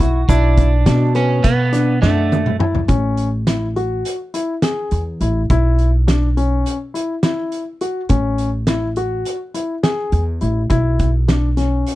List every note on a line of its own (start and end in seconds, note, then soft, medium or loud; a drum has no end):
0.00 0.24 B1 medium
0.00 0.19 E4 medium
0.00 0.32 F#4 medium
0.00 kick medium
0.00 closed hi-hat medium
0.29 0.83 B1 medium
0.29 1.15 D4 medium
0.29 0.67 E4 medium
0.29 kick medium
0.29 closed hi-hat medium
0.29 shaker medium
0.57 kick medium
0.57 closed hi-hat medium
0.86 1.40 B2 loud
0.86 1.05 D4 medium
0.86 snare loud
0.86 closed hi-hat medium
0.86 shaker soft
1.15 1.53 B3 medium
1.15 1.45 C#4 medium
1.15 closed hi-hat medium
1.44 1.98 B2 medium
1.44 2.01 B3 medium
1.44 kick medium
1.44 snare soft
1.44 closed hi-hat medium
1.72 1.92 D4 medium
1.72 snare soft
1.72 closed hi-hat medium
1.72 shaker soft
2.02 2.85 F#2 medium
2.02 2.56 A3 medium
2.02 2.40 D4 medium
2.02 snare medium
2.32 high tom medium
2.32 shaker soft
2.46 mid tom medium
2.60 2.79 E4 medium
2.60 mid tom medium
2.75 floor tom medium
2.88 4.01 A1 medium
2.88 3.27 C#4 medium
2.88 kick medium
2.88 closed hi-hat medium
3.17 closed hi-hat medium
3.47 3.66 E4 medium
3.47 snare medium
3.47 closed hi-hat medium
3.76 4.14 F#4 medium
3.76 closed hi-hat soft
4.05 closed hi-hat medium
4.34 4.53 E4 medium
4.34 closed hi-hat medium
4.62 5.01 G#4 medium
4.62 snare medium
4.62 closed hi-hat medium
4.91 5.19 E2 medium
4.91 closed hi-hat medium
5.21 5.48 A1 medium
5.21 5.40 E4 medium
5.21 closed hi-hat medium
5.50 6.62 B1 medium
5.50 5.89 E4 medium
5.50 kick medium
5.50 closed hi-hat medium
5.79 closed hi-hat soft
6.07 6.27 D4 medium
6.07 snare loud
6.07 closed hi-hat medium
6.37 6.75 C#4 medium
6.37 closed hi-hat medium
6.66 closed hi-hat medium
6.94 7.13 E4 medium
6.94 closed hi-hat medium
7.23 7.61 E4 medium
7.23 snare medium
7.23 closed hi-hat medium
7.52 closed hi-hat medium
7.81 8.00 F#4 medium
7.81 closed hi-hat medium
8.09 9.22 A1 medium
8.09 8.48 C#4 medium
8.09 kick medium
8.09 closed hi-hat medium
8.38 closed hi-hat medium
8.67 8.87 E4 medium
8.67 snare medium
8.67 closed hi-hat medium
8.96 9.35 F#4 medium
8.96 closed hi-hat medium
9.25 closed hi-hat medium
9.54 9.74 E4 medium
9.54 closed hi-hat medium
9.83 10.22 G#4 medium
9.83 snare medium
9.83 closed hi-hat medium
10.12 10.40 E2 medium
10.12 closed hi-hat medium
10.41 10.69 A1 medium
10.41 10.60 E4 medium
10.41 closed hi-hat soft
10.70 11.82 B1 medium
10.70 11.08 E4 medium
10.70 kick medium
10.70 closed hi-hat medium
10.99 kick medium
10.99 closed hi-hat medium
11.28 11.47 D4 medium
11.28 snare medium
11.28 closed hi-hat medium
11.57 11.95 C#4 medium
11.57 snare soft
11.57 closed hi-hat medium
11.87 closed hi-hat medium